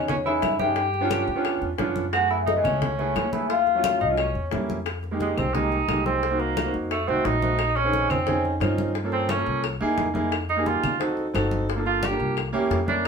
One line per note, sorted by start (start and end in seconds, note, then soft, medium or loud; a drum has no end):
0.00 0.39 E2 medium
0.00 0.13 B3 medium
0.00 0.13 C#4 medium
0.00 0.13 D#4 medium
0.00 0.13 G#4 medium
0.08 0.17 C#4 medium
0.08 0.16 C#5 medium
0.08 high bongo medium
0.08 high conga soft
0.08 low conga medium
0.25 0.49 B3 medium
0.25 0.50 C#4 medium
0.25 0.50 D#4 medium
0.25 0.57 E4 medium
0.25 0.50 G#4 medium
0.25 0.58 E5 medium
0.25 high bongo soft
0.25 high conga soft
0.42 1.22 G2 medium
0.42 high bongo medium
0.42 low bongo medium
0.42 high conga medium
0.42 claves medium
0.59 0.76 B3 medium
0.59 0.77 C#4 medium
0.59 0.77 D#4 medium
0.59 1.58 G4 medium
0.59 0.77 G#4 medium
0.59 1.59 G5 medium
0.59 high bongo soft
0.59 high conga medium
0.76 high bongo medium
0.76 high conga soft
0.94 high bongo soft
0.94 high conga soft
1.01 1.26 B3 medium
1.01 1.26 C#4 medium
1.01 1.26 D4 medium
1.01 1.26 F4 loud
1.10 high bongo medium
1.10 high conga medium
1.10 claves medium
1.27 1.59 D2 medium
1.27 high conga soft
1.35 1.66 B3 medium
1.35 1.66 C#4 medium
1.35 1.67 D4 medium
1.35 1.67 F4 medium
1.45 high bongo medium
1.45 high conga soft
1.45 claves medium
1.62 1.78 E2 medium
1.62 high conga soft
1.78 2.59 F#2 medium
1.78 2.02 B3 medium
1.78 2.03 C#4 medium
1.78 2.03 D4 medium
1.78 2.03 F4 loud
1.78 high bongo medium
1.78 low bongo medium
1.78 high conga medium
1.96 high bongo soft
1.96 high conga medium
2.13 2.43 A3 medium
2.13 2.43 B3 medium
2.13 2.43 E4 medium
2.13 2.29 F#4 medium
2.13 2.44 G#4 medium
2.13 2.30 F#5 loud
2.13 high bongo medium
2.13 high conga soft
2.13 claves medium
2.30 2.38 E4 medium
2.30 2.39 E5 medium
2.30 high bongo soft
2.30 high conga soft
2.46 2.54 D#4 medium
2.46 2.56 D#5 medium
2.46 high bongo medium
2.46 high conga medium
2.56 2.86 A3 medium
2.56 2.86 B3 medium
2.56 2.86 E4 medium
2.56 2.87 G#4 medium
2.64 3.12 C#2 medium
2.64 3.28 C#4 medium
2.64 3.36 C#5 medium
2.64 high conga soft
2.64 low conga medium
2.64 claves medium
2.82 high bongo medium
2.82 high conga soft
2.82 low conga medium
2.98 3.22 A3 medium
2.98 3.22 B3 medium
2.98 3.23 E4 medium
2.98 3.23 G#4 medium
2.98 high bongo soft
2.98 high conga soft
3.15 3.95 D#2 medium
3.15 high bongo medium
3.15 low bongo medium
3.15 high conga medium
3.15 claves medium
3.32 3.50 A3 medium
3.32 3.50 B3 medium
3.32 3.48 E4 medium
3.32 3.50 E4 medium
3.32 3.50 G#4 medium
3.32 3.51 E5 medium
3.32 high bongo soft
3.32 high conga medium
3.49 3.97 F4 medium
3.49 4.03 F5 loud
3.49 high bongo medium
3.49 high conga soft
3.66 high bongo soft
3.66 high conga soft
3.75 3.99 F#3 medium
3.75 3.99 A3 medium
3.75 3.99 C#4 medium
3.75 4.00 F4 medium
3.84 high bongo medium
3.84 high conga loud
3.84 claves medium
4.00 4.33 C2 medium
4.00 4.08 D#4 medium
4.00 4.10 D#5 medium
4.00 high conga soft
4.08 4.17 F#3 medium
4.08 4.18 A3 medium
4.08 4.18 C#4 medium
4.08 4.18 F4 medium
4.17 4.50 C#4 medium
4.17 high bongo medium
4.17 high conga soft
4.17 claves medium
4.35 4.51 E2 medium
4.35 high conga soft
4.51 5.32 F2 medium
4.51 4.75 G3 medium
4.51 4.76 A#3 medium
4.51 4.76 C#4 medium
4.51 4.76 E4 medium
4.51 high bongo medium
4.51 low bongo medium
4.51 high conga medium
4.69 high bongo soft
4.69 high conga medium
4.86 high bongo medium
4.86 high conga soft
4.86 claves medium
5.03 high bongo soft
5.03 high conga soft
5.11 5.41 G#3 medium
5.11 5.42 A#3 medium
5.11 5.42 D#4 medium
5.11 5.42 G4 medium
5.20 5.39 G#3 medium
5.20 high bongo medium
5.20 high conga medium
5.37 5.85 C2 medium
5.37 5.55 C4 medium
5.37 high conga soft
5.37 low conga medium
5.37 claves medium
5.53 5.78 G#3 medium
5.53 5.78 A#3 medium
5.53 6.05 D#4 medium
5.53 5.78 D#4 medium
5.53 5.79 G4 medium
5.53 high bongo medium
5.53 high conga soft
5.53 low conga medium
5.72 high bongo soft
5.72 high conga soft
5.88 6.68 C2 medium
5.88 6.18 G#3 medium
5.88 6.19 A#3 medium
5.88 6.19 D#4 medium
5.88 6.19 G4 medium
5.88 high bongo medium
5.88 low bongo medium
5.88 high conga medium
5.88 claves medium
6.05 6.41 C4 medium
6.05 high bongo soft
6.05 high conga medium
6.23 high bongo medium
6.23 high conga soft
6.31 6.55 A#3 medium
6.31 6.55 C4 medium
6.31 6.55 D#4 medium
6.31 6.56 F#4 medium
6.40 6.74 A#3 medium
6.40 high bongo soft
6.40 high conga soft
6.57 high bongo medium
6.57 high conga loud
6.57 claves medium
6.64 6.90 A#3 medium
6.64 6.90 C4 medium
6.64 6.91 D#4 medium
6.64 6.91 F#4 medium
6.74 7.06 F2 medium
6.74 high conga soft
6.91 7.10 A3 medium
6.91 high bongo medium
6.91 high conga soft
6.91 claves medium
7.07 7.24 C2 medium
7.07 7.32 A3 medium
7.07 7.32 C4 medium
7.07 7.27 C4 medium
7.07 7.32 D#4 medium
7.07 7.33 F#4 medium
7.07 high conga soft
7.25 8.05 A#1 medium
7.25 7.78 D#4 medium
7.25 high bongo medium
7.25 low bongo medium
7.25 high conga medium
7.41 7.59 A3 medium
7.41 7.59 C4 medium
7.41 7.59 D#4 medium
7.41 7.60 F#4 medium
7.41 high bongo soft
7.41 high conga medium
7.59 high bongo medium
7.59 high conga soft
7.59 claves medium
7.76 8.11 C#4 medium
7.76 high bongo soft
7.76 high conga soft
7.84 8.14 C4 medium
7.84 8.14 C#4 medium
7.84 8.15 D#4 medium
7.84 8.15 G#4 medium
7.93 high bongo medium
7.93 high conga medium
8.10 8.58 F2 medium
8.10 8.44 C4 medium
8.10 high conga soft
8.10 low conga medium
8.10 claves medium
8.26 8.51 C4 medium
8.26 8.51 C#4 medium
8.26 8.51 D#4 medium
8.26 8.52 G#4 medium
8.26 high bongo medium
8.26 high conga soft
8.26 low conga medium
8.45 high bongo soft
8.45 high conga soft
8.60 9.41 G2 medium
8.60 8.91 C4 medium
8.60 8.91 C#4 medium
8.60 8.91 D#4 medium
8.60 8.92 F4 medium
8.60 high bongo medium
8.60 low bongo medium
8.60 high conga medium
8.60 claves medium
8.78 high bongo soft
8.78 high conga medium
8.95 high bongo medium
8.95 high conga soft
9.04 9.28 A#3 medium
9.04 9.28 C#4 medium
9.04 9.29 F4 medium
9.04 9.29 A4 medium
9.12 9.31 C4 medium
9.12 high bongo soft
9.12 high conga soft
9.29 9.64 C#4 medium
9.29 high bongo medium
9.29 high conga medium
9.29 claves medium
9.37 9.63 A#3 medium
9.37 9.64 C#4 medium
9.37 9.64 F4 medium
9.37 9.64 A4 medium
9.46 9.78 C2 medium
9.46 high conga soft
9.64 high bongo medium
9.64 high conga soft
9.64 claves medium
9.81 9.97 D#2 medium
9.81 10.05 A#3 loud
9.81 10.05 D#4 medium
9.81 10.05 E4 medium
9.81 10.06 G#4 loud
9.81 high conga soft
9.98 10.78 F2 medium
9.98 high bongo medium
9.98 low bongo medium
9.98 high conga medium
10.14 10.32 A#3 medium
10.14 10.32 D#4 medium
10.14 10.32 E4 medium
10.14 10.32 G#4 medium
10.14 high bongo soft
10.14 high conga medium
10.32 high bongo medium
10.32 high conga soft
10.32 claves medium
10.49 10.68 D#4 medium
10.49 high bongo soft
10.49 high conga soft
10.57 10.87 A#3 medium
10.57 10.88 D#4 medium
10.57 10.88 G4 medium
10.57 10.88 G#4 medium
10.66 11.01 F4 medium
10.66 high bongo medium
10.66 high conga medium
10.83 11.31 D2 medium
10.83 high conga soft
10.83 low conga medium
10.83 claves medium
11.00 11.24 C4 medium
11.00 11.24 D#4 medium
11.00 11.25 F#4 medium
11.00 11.25 A4 medium
11.00 high bongo medium
11.00 high conga soft
11.17 high bongo soft
11.17 high conga soft
11.34 12.14 G1 medium
11.34 11.64 C4 medium
11.34 11.64 D#4 medium
11.34 11.65 F#4 medium
11.34 11.65 A4 medium
11.34 high bongo medium
11.34 low bongo medium
11.34 high conga medium
11.34 claves medium
11.51 high bongo soft
11.51 high conga medium
11.69 high bongo medium
11.69 high conga soft
11.76 12.01 A#3 medium
11.76 12.01 D4 medium
11.76 12.01 F4 medium
11.76 12.02 A4 medium
11.86 12.06 F4 medium
11.86 high bongo soft
11.86 high conga soft
12.03 12.38 G4 medium
12.03 high bongo medium
12.03 high conga loud
12.03 claves medium
12.10 12.37 A#3 medium
12.10 12.37 D4 medium
12.10 12.37 F4 medium
12.10 12.37 A#4 medium
12.19 12.51 C2 medium
12.19 high conga soft
12.37 high bongo medium
12.37 high conga soft
12.37 claves medium
12.53 12.70 E2 medium
12.53 12.77 A#3 loud
12.53 12.78 C#4 medium
12.53 12.78 E4 medium
12.53 12.78 G4 loud
12.53 high conga soft
12.70 13.08 F2 medium
12.70 high bongo medium
12.70 low bongo medium
12.70 high conga medium
12.86 13.04 A#3 medium
12.86 13.05 C#4 medium
12.86 13.07 D4 medium
12.86 13.05 E4 medium
12.86 13.05 A#4 medium
12.86 high bongo soft
12.86 high conga medium